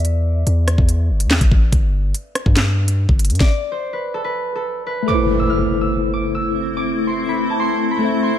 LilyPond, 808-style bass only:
\new Staff \with { instrumentName = "808-style bass" } { \clef bass \time 4/4 \key a \minor \tempo 4 = 143 e,4 e,8. e,8. g,,16. e,16. a,,16 a,,8 | g,,4 r8. g,4. g,,8 g,16 | r1 | r1 |
r1 | }